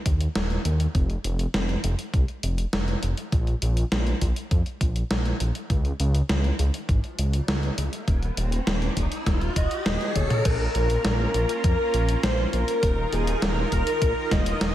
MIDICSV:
0, 0, Header, 1, 7, 480
1, 0, Start_track
1, 0, Key_signature, -5, "minor"
1, 0, Tempo, 594059
1, 766, Time_signature, 4, 2, 24, 8
1, 11917, End_track
2, 0, Start_track
2, 0, Title_t, "Soft synth lead"
2, 0, Program_c, 0, 80
2, 7728, Note_on_c, 0, 75, 104
2, 8209, Note_on_c, 0, 73, 91
2, 8221, Note_off_c, 0, 75, 0
2, 8449, Note_on_c, 0, 70, 108
2, 8461, Note_off_c, 0, 73, 0
2, 9403, Note_off_c, 0, 70, 0
2, 9408, Note_on_c, 0, 70, 103
2, 9855, Note_off_c, 0, 70, 0
2, 9889, Note_on_c, 0, 72, 91
2, 9997, Note_off_c, 0, 72, 0
2, 10129, Note_on_c, 0, 70, 103
2, 10609, Note_on_c, 0, 68, 88
2, 10621, Note_off_c, 0, 70, 0
2, 10848, Note_on_c, 0, 70, 92
2, 10860, Note_off_c, 0, 68, 0
2, 11083, Note_off_c, 0, 70, 0
2, 11088, Note_on_c, 0, 70, 102
2, 11568, Note_on_c, 0, 75, 111
2, 11580, Note_off_c, 0, 70, 0
2, 11917, Note_off_c, 0, 75, 0
2, 11917, End_track
3, 0, Start_track
3, 0, Title_t, "String machine"
3, 0, Program_c, 1, 50
3, 8448, Note_on_c, 1, 70, 100
3, 9375, Note_off_c, 1, 70, 0
3, 9408, Note_on_c, 1, 70, 95
3, 9855, Note_off_c, 1, 70, 0
3, 9887, Note_on_c, 1, 72, 92
3, 9995, Note_off_c, 1, 72, 0
3, 10127, Note_on_c, 1, 70, 101
3, 10574, Note_off_c, 1, 70, 0
3, 10608, Note_on_c, 1, 68, 88
3, 10830, Note_off_c, 1, 68, 0
3, 10848, Note_on_c, 1, 70, 96
3, 11070, Note_off_c, 1, 70, 0
3, 11089, Note_on_c, 1, 70, 97
3, 11535, Note_off_c, 1, 70, 0
3, 11569, Note_on_c, 1, 75, 104
3, 11917, Note_off_c, 1, 75, 0
3, 11917, End_track
4, 0, Start_track
4, 0, Title_t, "Supersaw synth"
4, 0, Program_c, 2, 81
4, 8447, Note_on_c, 2, 58, 79
4, 8447, Note_on_c, 2, 61, 70
4, 8447, Note_on_c, 2, 65, 87
4, 10347, Note_off_c, 2, 58, 0
4, 10347, Note_off_c, 2, 61, 0
4, 10347, Note_off_c, 2, 65, 0
4, 10366, Note_on_c, 2, 51, 78
4, 10366, Note_on_c, 2, 63, 69
4, 10366, Note_on_c, 2, 65, 68
4, 10366, Note_on_c, 2, 70, 82
4, 11917, Note_off_c, 2, 51, 0
4, 11917, Note_off_c, 2, 63, 0
4, 11917, Note_off_c, 2, 65, 0
4, 11917, Note_off_c, 2, 70, 0
4, 11917, End_track
5, 0, Start_track
5, 0, Title_t, "Detuned saw bass"
5, 0, Program_c, 3, 39
5, 46, Note_on_c, 3, 39, 90
5, 226, Note_off_c, 3, 39, 0
5, 286, Note_on_c, 3, 27, 81
5, 465, Note_off_c, 3, 27, 0
5, 525, Note_on_c, 3, 39, 86
5, 705, Note_off_c, 3, 39, 0
5, 766, Note_on_c, 3, 29, 99
5, 946, Note_off_c, 3, 29, 0
5, 1006, Note_on_c, 3, 29, 99
5, 1185, Note_off_c, 3, 29, 0
5, 1246, Note_on_c, 3, 29, 97
5, 1425, Note_off_c, 3, 29, 0
5, 1486, Note_on_c, 3, 29, 107
5, 1576, Note_off_c, 3, 29, 0
5, 1726, Note_on_c, 3, 36, 81
5, 1816, Note_off_c, 3, 36, 0
5, 1965, Note_on_c, 3, 29, 95
5, 2145, Note_off_c, 3, 29, 0
5, 2205, Note_on_c, 3, 29, 86
5, 2385, Note_off_c, 3, 29, 0
5, 2445, Note_on_c, 3, 29, 78
5, 2535, Note_off_c, 3, 29, 0
5, 2686, Note_on_c, 3, 34, 101
5, 2865, Note_off_c, 3, 34, 0
5, 2925, Note_on_c, 3, 34, 98
5, 3105, Note_off_c, 3, 34, 0
5, 3165, Note_on_c, 3, 34, 90
5, 3345, Note_off_c, 3, 34, 0
5, 3406, Note_on_c, 3, 34, 109
5, 3496, Note_off_c, 3, 34, 0
5, 3645, Note_on_c, 3, 41, 81
5, 3735, Note_off_c, 3, 41, 0
5, 3885, Note_on_c, 3, 34, 93
5, 4065, Note_off_c, 3, 34, 0
5, 4125, Note_on_c, 3, 34, 85
5, 4305, Note_off_c, 3, 34, 0
5, 4365, Note_on_c, 3, 34, 80
5, 4455, Note_off_c, 3, 34, 0
5, 4605, Note_on_c, 3, 37, 102
5, 4785, Note_off_c, 3, 37, 0
5, 4846, Note_on_c, 3, 37, 98
5, 5026, Note_off_c, 3, 37, 0
5, 5086, Note_on_c, 3, 37, 92
5, 5266, Note_off_c, 3, 37, 0
5, 5326, Note_on_c, 3, 37, 110
5, 5416, Note_off_c, 3, 37, 0
5, 5566, Note_on_c, 3, 32, 85
5, 5656, Note_off_c, 3, 32, 0
5, 5806, Note_on_c, 3, 37, 97
5, 5986, Note_off_c, 3, 37, 0
5, 6046, Note_on_c, 3, 37, 86
5, 6225, Note_off_c, 3, 37, 0
5, 6286, Note_on_c, 3, 37, 83
5, 6376, Note_off_c, 3, 37, 0
5, 6526, Note_on_c, 3, 27, 101
5, 6705, Note_off_c, 3, 27, 0
5, 6766, Note_on_c, 3, 27, 101
5, 6945, Note_off_c, 3, 27, 0
5, 7006, Note_on_c, 3, 27, 96
5, 7185, Note_off_c, 3, 27, 0
5, 7246, Note_on_c, 3, 27, 111
5, 7336, Note_off_c, 3, 27, 0
5, 7486, Note_on_c, 3, 27, 93
5, 7666, Note_off_c, 3, 27, 0
5, 7726, Note_on_c, 3, 27, 92
5, 7816, Note_off_c, 3, 27, 0
5, 7966, Note_on_c, 3, 27, 86
5, 8056, Note_off_c, 3, 27, 0
5, 8206, Note_on_c, 3, 27, 92
5, 8296, Note_off_c, 3, 27, 0
5, 8446, Note_on_c, 3, 34, 105
5, 8626, Note_off_c, 3, 34, 0
5, 8686, Note_on_c, 3, 34, 101
5, 8866, Note_off_c, 3, 34, 0
5, 8925, Note_on_c, 3, 34, 94
5, 9105, Note_off_c, 3, 34, 0
5, 9165, Note_on_c, 3, 34, 105
5, 9255, Note_off_c, 3, 34, 0
5, 9406, Note_on_c, 3, 41, 85
5, 9496, Note_off_c, 3, 41, 0
5, 9646, Note_on_c, 3, 34, 97
5, 9825, Note_off_c, 3, 34, 0
5, 9886, Note_on_c, 3, 34, 85
5, 10065, Note_off_c, 3, 34, 0
5, 10126, Note_on_c, 3, 34, 83
5, 10216, Note_off_c, 3, 34, 0
5, 10366, Note_on_c, 3, 27, 97
5, 10545, Note_off_c, 3, 27, 0
5, 10606, Note_on_c, 3, 27, 102
5, 10785, Note_off_c, 3, 27, 0
5, 10846, Note_on_c, 3, 27, 97
5, 11026, Note_off_c, 3, 27, 0
5, 11086, Note_on_c, 3, 27, 112
5, 11176, Note_off_c, 3, 27, 0
5, 11326, Note_on_c, 3, 34, 82
5, 11416, Note_off_c, 3, 34, 0
5, 11566, Note_on_c, 3, 27, 96
5, 11745, Note_off_c, 3, 27, 0
5, 11806, Note_on_c, 3, 27, 82
5, 11917, Note_off_c, 3, 27, 0
5, 11917, End_track
6, 0, Start_track
6, 0, Title_t, "Riser"
6, 0, Program_c, 4, 103
6, 4606, Note_on_c, 4, 60, 70
6, 8446, Note_off_c, 4, 60, 0
6, 11917, End_track
7, 0, Start_track
7, 0, Title_t, "Drums"
7, 46, Note_on_c, 9, 36, 107
7, 46, Note_on_c, 9, 42, 89
7, 127, Note_off_c, 9, 36, 0
7, 127, Note_off_c, 9, 42, 0
7, 166, Note_on_c, 9, 42, 53
7, 247, Note_off_c, 9, 42, 0
7, 287, Note_on_c, 9, 38, 127
7, 287, Note_on_c, 9, 42, 53
7, 367, Note_off_c, 9, 38, 0
7, 367, Note_off_c, 9, 42, 0
7, 406, Note_on_c, 9, 42, 26
7, 487, Note_off_c, 9, 42, 0
7, 526, Note_on_c, 9, 42, 89
7, 607, Note_off_c, 9, 42, 0
7, 646, Note_on_c, 9, 42, 53
7, 727, Note_off_c, 9, 42, 0
7, 766, Note_on_c, 9, 36, 120
7, 766, Note_on_c, 9, 42, 49
7, 847, Note_off_c, 9, 36, 0
7, 847, Note_off_c, 9, 42, 0
7, 886, Note_on_c, 9, 42, 26
7, 967, Note_off_c, 9, 42, 0
7, 1005, Note_on_c, 9, 42, 84
7, 1086, Note_off_c, 9, 42, 0
7, 1125, Note_on_c, 9, 42, 49
7, 1206, Note_off_c, 9, 42, 0
7, 1245, Note_on_c, 9, 38, 110
7, 1245, Note_on_c, 9, 42, 46
7, 1326, Note_off_c, 9, 38, 0
7, 1326, Note_off_c, 9, 42, 0
7, 1366, Note_on_c, 9, 42, 26
7, 1446, Note_off_c, 9, 42, 0
7, 1485, Note_on_c, 9, 42, 89
7, 1566, Note_off_c, 9, 42, 0
7, 1605, Note_on_c, 9, 42, 52
7, 1686, Note_off_c, 9, 42, 0
7, 1726, Note_on_c, 9, 36, 121
7, 1726, Note_on_c, 9, 42, 48
7, 1807, Note_off_c, 9, 36, 0
7, 1807, Note_off_c, 9, 42, 0
7, 1846, Note_on_c, 9, 42, 24
7, 1926, Note_off_c, 9, 42, 0
7, 1965, Note_on_c, 9, 42, 85
7, 2046, Note_off_c, 9, 42, 0
7, 2086, Note_on_c, 9, 42, 49
7, 2166, Note_off_c, 9, 42, 0
7, 2206, Note_on_c, 9, 38, 127
7, 2206, Note_on_c, 9, 42, 51
7, 2286, Note_off_c, 9, 38, 0
7, 2286, Note_off_c, 9, 42, 0
7, 2325, Note_on_c, 9, 42, 25
7, 2406, Note_off_c, 9, 42, 0
7, 2445, Note_on_c, 9, 42, 91
7, 2526, Note_off_c, 9, 42, 0
7, 2565, Note_on_c, 9, 42, 51
7, 2646, Note_off_c, 9, 42, 0
7, 2686, Note_on_c, 9, 36, 122
7, 2686, Note_on_c, 9, 42, 47
7, 2767, Note_off_c, 9, 36, 0
7, 2767, Note_off_c, 9, 42, 0
7, 2806, Note_on_c, 9, 42, 24
7, 2886, Note_off_c, 9, 42, 0
7, 2925, Note_on_c, 9, 42, 88
7, 3006, Note_off_c, 9, 42, 0
7, 3045, Note_on_c, 9, 42, 50
7, 3126, Note_off_c, 9, 42, 0
7, 3166, Note_on_c, 9, 38, 106
7, 3166, Note_on_c, 9, 42, 46
7, 3247, Note_off_c, 9, 38, 0
7, 3247, Note_off_c, 9, 42, 0
7, 3285, Note_on_c, 9, 42, 25
7, 3366, Note_off_c, 9, 42, 0
7, 3405, Note_on_c, 9, 42, 92
7, 3406, Note_on_c, 9, 36, 59
7, 3486, Note_off_c, 9, 36, 0
7, 3486, Note_off_c, 9, 42, 0
7, 3526, Note_on_c, 9, 42, 52
7, 3607, Note_off_c, 9, 42, 0
7, 3646, Note_on_c, 9, 36, 117
7, 3646, Note_on_c, 9, 42, 49
7, 3726, Note_off_c, 9, 36, 0
7, 3727, Note_off_c, 9, 42, 0
7, 3766, Note_on_c, 9, 42, 24
7, 3846, Note_off_c, 9, 42, 0
7, 3886, Note_on_c, 9, 36, 103
7, 3886, Note_on_c, 9, 42, 86
7, 3966, Note_off_c, 9, 36, 0
7, 3966, Note_off_c, 9, 42, 0
7, 4006, Note_on_c, 9, 42, 47
7, 4086, Note_off_c, 9, 42, 0
7, 4126, Note_on_c, 9, 38, 119
7, 4126, Note_on_c, 9, 42, 51
7, 4207, Note_off_c, 9, 38, 0
7, 4207, Note_off_c, 9, 42, 0
7, 4246, Note_on_c, 9, 42, 25
7, 4326, Note_off_c, 9, 42, 0
7, 4365, Note_on_c, 9, 42, 91
7, 4446, Note_off_c, 9, 42, 0
7, 4486, Note_on_c, 9, 42, 50
7, 4566, Note_off_c, 9, 42, 0
7, 4605, Note_on_c, 9, 36, 111
7, 4606, Note_on_c, 9, 42, 48
7, 4686, Note_off_c, 9, 36, 0
7, 4686, Note_off_c, 9, 42, 0
7, 4726, Note_on_c, 9, 42, 25
7, 4807, Note_off_c, 9, 42, 0
7, 4845, Note_on_c, 9, 42, 87
7, 4926, Note_off_c, 9, 42, 0
7, 4966, Note_on_c, 9, 42, 49
7, 5046, Note_off_c, 9, 42, 0
7, 5086, Note_on_c, 9, 38, 104
7, 5086, Note_on_c, 9, 42, 49
7, 5167, Note_off_c, 9, 38, 0
7, 5167, Note_off_c, 9, 42, 0
7, 5206, Note_on_c, 9, 42, 25
7, 5287, Note_off_c, 9, 42, 0
7, 5326, Note_on_c, 9, 42, 90
7, 5407, Note_off_c, 9, 42, 0
7, 5446, Note_on_c, 9, 42, 55
7, 5527, Note_off_c, 9, 42, 0
7, 5566, Note_on_c, 9, 36, 116
7, 5566, Note_on_c, 9, 42, 49
7, 5646, Note_off_c, 9, 36, 0
7, 5647, Note_off_c, 9, 42, 0
7, 5687, Note_on_c, 9, 42, 25
7, 5767, Note_off_c, 9, 42, 0
7, 5806, Note_on_c, 9, 42, 90
7, 5887, Note_off_c, 9, 42, 0
7, 5926, Note_on_c, 9, 42, 52
7, 6007, Note_off_c, 9, 42, 0
7, 6046, Note_on_c, 9, 38, 116
7, 6046, Note_on_c, 9, 42, 53
7, 6127, Note_off_c, 9, 38, 0
7, 6127, Note_off_c, 9, 42, 0
7, 6166, Note_on_c, 9, 42, 26
7, 6247, Note_off_c, 9, 42, 0
7, 6286, Note_on_c, 9, 42, 89
7, 6366, Note_off_c, 9, 42, 0
7, 6406, Note_on_c, 9, 42, 53
7, 6487, Note_off_c, 9, 42, 0
7, 6526, Note_on_c, 9, 36, 121
7, 6526, Note_on_c, 9, 42, 51
7, 6607, Note_off_c, 9, 36, 0
7, 6607, Note_off_c, 9, 42, 0
7, 6646, Note_on_c, 9, 42, 27
7, 6727, Note_off_c, 9, 42, 0
7, 6766, Note_on_c, 9, 42, 90
7, 6847, Note_off_c, 9, 42, 0
7, 6886, Note_on_c, 9, 42, 51
7, 6967, Note_off_c, 9, 42, 0
7, 7006, Note_on_c, 9, 38, 108
7, 7006, Note_on_c, 9, 42, 52
7, 7087, Note_off_c, 9, 38, 0
7, 7087, Note_off_c, 9, 42, 0
7, 7126, Note_on_c, 9, 42, 28
7, 7207, Note_off_c, 9, 42, 0
7, 7246, Note_on_c, 9, 36, 59
7, 7246, Note_on_c, 9, 42, 95
7, 7326, Note_off_c, 9, 42, 0
7, 7327, Note_off_c, 9, 36, 0
7, 7366, Note_on_c, 9, 42, 55
7, 7447, Note_off_c, 9, 42, 0
7, 7486, Note_on_c, 9, 36, 119
7, 7486, Note_on_c, 9, 38, 58
7, 7486, Note_on_c, 9, 42, 54
7, 7567, Note_off_c, 9, 36, 0
7, 7567, Note_off_c, 9, 38, 0
7, 7567, Note_off_c, 9, 42, 0
7, 7606, Note_on_c, 9, 42, 26
7, 7687, Note_off_c, 9, 42, 0
7, 7726, Note_on_c, 9, 36, 96
7, 7726, Note_on_c, 9, 42, 94
7, 7807, Note_off_c, 9, 36, 0
7, 7807, Note_off_c, 9, 42, 0
7, 7846, Note_on_c, 9, 42, 50
7, 7927, Note_off_c, 9, 42, 0
7, 7966, Note_on_c, 9, 38, 114
7, 7966, Note_on_c, 9, 42, 55
7, 8047, Note_off_c, 9, 38, 0
7, 8047, Note_off_c, 9, 42, 0
7, 8086, Note_on_c, 9, 42, 28
7, 8167, Note_off_c, 9, 42, 0
7, 8206, Note_on_c, 9, 36, 60
7, 8206, Note_on_c, 9, 42, 91
7, 8206, Note_on_c, 9, 48, 59
7, 8286, Note_off_c, 9, 42, 0
7, 8286, Note_off_c, 9, 48, 0
7, 8287, Note_off_c, 9, 36, 0
7, 8326, Note_on_c, 9, 42, 56
7, 8326, Note_on_c, 9, 47, 74
7, 8407, Note_off_c, 9, 42, 0
7, 8407, Note_off_c, 9, 47, 0
7, 8445, Note_on_c, 9, 42, 99
7, 8445, Note_on_c, 9, 49, 101
7, 8446, Note_on_c, 9, 36, 125
7, 8526, Note_off_c, 9, 42, 0
7, 8526, Note_off_c, 9, 49, 0
7, 8527, Note_off_c, 9, 36, 0
7, 8686, Note_on_c, 9, 42, 69
7, 8766, Note_off_c, 9, 42, 0
7, 8806, Note_on_c, 9, 42, 68
7, 8886, Note_off_c, 9, 42, 0
7, 8925, Note_on_c, 9, 38, 113
7, 8925, Note_on_c, 9, 42, 92
7, 9006, Note_off_c, 9, 38, 0
7, 9006, Note_off_c, 9, 42, 0
7, 9166, Note_on_c, 9, 42, 73
7, 9247, Note_off_c, 9, 42, 0
7, 9286, Note_on_c, 9, 42, 71
7, 9367, Note_off_c, 9, 42, 0
7, 9406, Note_on_c, 9, 36, 124
7, 9406, Note_on_c, 9, 42, 96
7, 9487, Note_off_c, 9, 36, 0
7, 9487, Note_off_c, 9, 42, 0
7, 9646, Note_on_c, 9, 42, 73
7, 9727, Note_off_c, 9, 42, 0
7, 9765, Note_on_c, 9, 42, 68
7, 9846, Note_off_c, 9, 42, 0
7, 9885, Note_on_c, 9, 38, 122
7, 9885, Note_on_c, 9, 42, 99
7, 9966, Note_off_c, 9, 38, 0
7, 9966, Note_off_c, 9, 42, 0
7, 10126, Note_on_c, 9, 42, 69
7, 10206, Note_off_c, 9, 42, 0
7, 10245, Note_on_c, 9, 42, 74
7, 10326, Note_off_c, 9, 42, 0
7, 10365, Note_on_c, 9, 42, 95
7, 10366, Note_on_c, 9, 36, 127
7, 10446, Note_off_c, 9, 42, 0
7, 10447, Note_off_c, 9, 36, 0
7, 10605, Note_on_c, 9, 42, 65
7, 10686, Note_off_c, 9, 42, 0
7, 10726, Note_on_c, 9, 42, 66
7, 10806, Note_off_c, 9, 42, 0
7, 10846, Note_on_c, 9, 38, 119
7, 10846, Note_on_c, 9, 42, 87
7, 10926, Note_off_c, 9, 38, 0
7, 10926, Note_off_c, 9, 42, 0
7, 11086, Note_on_c, 9, 36, 66
7, 11086, Note_on_c, 9, 42, 72
7, 11167, Note_off_c, 9, 36, 0
7, 11167, Note_off_c, 9, 42, 0
7, 11206, Note_on_c, 9, 42, 72
7, 11287, Note_off_c, 9, 42, 0
7, 11326, Note_on_c, 9, 36, 126
7, 11326, Note_on_c, 9, 42, 95
7, 11407, Note_off_c, 9, 36, 0
7, 11407, Note_off_c, 9, 42, 0
7, 11566, Note_on_c, 9, 36, 112
7, 11566, Note_on_c, 9, 38, 65
7, 11566, Note_on_c, 9, 42, 69
7, 11647, Note_off_c, 9, 36, 0
7, 11647, Note_off_c, 9, 38, 0
7, 11647, Note_off_c, 9, 42, 0
7, 11686, Note_on_c, 9, 42, 67
7, 11767, Note_off_c, 9, 42, 0
7, 11806, Note_on_c, 9, 38, 127
7, 11806, Note_on_c, 9, 42, 102
7, 11887, Note_off_c, 9, 38, 0
7, 11887, Note_off_c, 9, 42, 0
7, 11917, End_track
0, 0, End_of_file